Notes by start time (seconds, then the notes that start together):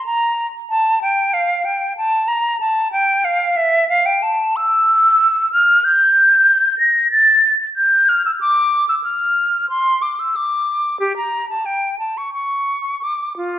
0.06 A#5
0.70 A5
1.02 G5
1.34 F5
1.65 G5
1.97 A5
2.28 A#5
2.60 A5
2.92 G5
3.25 F5
3.56 E5
3.89 F5
4.06 G5
4.23 A5
4.56 E6
5.53 F6
5.84 G6
6.79 A#6
7.11 A6
7.76 G6
8.09 F6
8.26 E6
8.41 D6
8.89 E6
9.04 F6
9.69 C6
10.02 D6
10.20 E6
10.36 D6
11.00 G4
11.17 A#5
11.50 A5
11.66 G5
11.99 A5
12.18 C#6
12.34 C#6
13.03 D6
13.37 F4